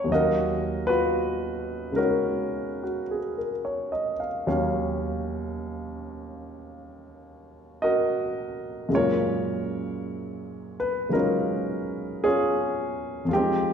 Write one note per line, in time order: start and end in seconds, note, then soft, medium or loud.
0.00 0.10 E2 soft
0.00 0.11 E3 soft
0.00 0.11 A#3 soft
0.00 0.10 B3 soft
0.00 0.11 D4 soft
0.00 0.11 E4 soft
0.00 0.11 A#4 soft
0.00 0.13 C#5 medium
0.04 4.45 D#2 soft
0.04 4.46 D#3 soft
0.09 4.46 F#3 soft
0.09 1.97 C#4 soft
0.09 0.87 F#4 medium
0.09 0.88 D#5 medium
0.14 1.95 A#4 medium
0.14 4.18 F5 soft
0.87 3.02 F4 medium
0.87 1.97 F#4 medium
0.87 1.91 B4 medium
1.92 4.47 C#3 soft
1.92 4.47 G#3 soft
1.92 4.48 D#4 soft
1.96 4.46 C#4 soft
1.96 2.82 F#4 soft
1.96 3.36 A#4 medium
2.83 3.17 F#4 soft
3.11 3.49 G#4 soft
3.38 3.90 A#4 soft
3.65 4.13 C#5 soft
3.92 4.26 D#5 soft
4.20 4.47 F5 soft
4.47 8.90 D#2 soft
4.47 8.90 D#3 soft
4.47 8.90 F#3 soft
4.47 8.90 C#4 soft
4.47 8.91 F5 medium
7.82 8.89 F#4 soft
7.82 8.89 A#4 soft
7.82 8.88 D#5 medium
8.89 13.29 F#2 soft
8.89 13.31 A#2 soft
8.89 11.08 C#3 soft
8.89 11.10 G#3 soft
8.94 11.14 F4 soft
8.94 11.10 A#4 soft
8.94 10.74 C#5 medium
10.80 11.10 B4 medium
11.09 13.29 C#3 soft
11.09 13.29 F#3 soft
11.09 13.29 G#3 soft
11.09 13.30 D#4 soft
11.09 12.25 A#4 medium
11.15 12.23 C#4 soft
11.15 12.24 F4 soft
12.24 13.28 C#4 medium
12.24 13.27 F4 soft
12.24 13.23 G#4 medium
13.25 13.73 F2 soft
13.25 13.73 F3 soft
13.25 13.31 F4 medium
13.31 13.73 G#3 soft
13.31 13.73 D#4 soft
13.31 13.73 G4 medium
13.36 13.73 C4 medium
13.36 13.73 G5 soft